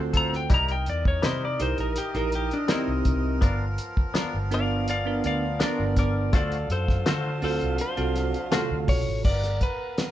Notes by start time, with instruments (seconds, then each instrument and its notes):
Already playing: fingered electric bass D2, horn section F#3 C4 D4 C5, tine electric piano C4 F4 F#4 A4
0.13 clean electric guitar C4 F4 A4, electric slide guitar A#5, kick, closed hi-hat
0.33 electric slide guitar G5, snare
0.50 fingered electric bass C2, horn section E3 D#4 A#4 D#5, clean electric guitar G3 D#4 E4 A#4, kick, closed hi-hat
0.54 electric slide guitar A#5
0.68 electric slide guitar G5, closed hi-hat
0.86 fingered electric bass E2, electric slide guitar D5, closed hi-hat
1.05 electric slide guitar C#5, kick
1.22 fingered electric bass C3, clean electric guitar G3 D#4 E4 A#4, electric slide guitar C5, snare, closed hi-hat
1.45 electric slide guitar D5
1.59 fingered electric bass C2, tine electric piano D#4 E4 G4 A#4, electric slide guitar C5, closed hi-hat
1.78 fingered electric bass A#1, electric slide guitar A#4, closed hi-hat
1.96 electric slide guitar G4, closed hi-hat
2.14 fingered electric bass A#1, tine electric piano D#4 E4 G4 A#4, electric slide guitar A#4, closed hi-hat
2.32 electric slide guitar G4, closed hi-hat
2.51 electric slide guitar D4, closed hi-hat
2.68 clean electric guitar G3 D#4 E4 A#4, electric slide guitar C4, tine electric piano D#4 E4 G4 A#4, snare, closed hi-hat
2.88 fingered electric bass C2
3.05 fingered electric bass C2, kick, closed hi-hat
3.41 fingered electric bass G1, horn section F3 B3 F4, clean electric guitar B3 D4 F4 A#4, kick, closed hi-hat
3.78 closed hi-hat
3.97 kick
4.14 clean electric guitar B3 D4 F4 A#4, snare, closed hi-hat
4.34 fingered electric bass G1
4.51 tine electric piano B3 D4 F4 A#4, electric slide guitar D5 F5, closed hi-hat
4.88 electric slide guitar D5 F5, closed hi-hat
5.06 tine electric piano B3 D4 F4 A#4
5.24 fingered electric bass D2, electric slide guitar D5 F5, closed hi-hat
5.60 clean electric guitar B3 D4 F4 A#4, tine electric piano B3 D4 F4 A#4, electric slide guitar A#4 D5, snare, closed hi-hat
5.79 fingered electric bass G1
5.96 electric slide guitar A#4 D5, kick, closed hi-hat
6.33 fingered electric bass D2, horn section F#3 D4 F4 F5, clean electric guitar A3 F4 F#4 C5, electric slide guitar A4 D5, kick, closed hi-hat
6.52 closed hi-hat
6.70 fingered electric bass F#2, electric slide guitar A4 C5, closed hi-hat
6.88 kick, snare
7.06 fingered electric bass D3, clean electric guitar A3 F4 F#4 C5, electric slide guitar A4 C5, snare, closed hi-hat
7.42 fingered electric bass D2, tine electric piano C4 F4 F#4 A4, electric slide guitar A4 C5, open hi-hat
7.61 fingered electric bass C2, closed hi-hat
7.78 electric slide guitar C5, closed hi-hat
7.97 fingered electric bass C2, tine electric piano C4 F4 F#4 A4, closed hi-hat
8.16 snare, closed hi-hat
8.34 closed hi-hat
8.51 tine electric piano C3 F4 F#4 A4, clean electric guitar A3 F4 F#4 C5, snare, closed hi-hat
8.71 fingered electric bass D2
8.88 fingered electric bass B1, electric slide guitar C#5, kick, open hi-hat
9.08 fingered electric bass A1
9.24 fingered electric bass G1, horn section B3 A#4 F5 A#5, electric slide guitar D5, kick, crash
9.43 snare, closed hi-hat
9.61 electric slide guitar B4, kick, closed hi-hat
9.98 snare, closed hi-hat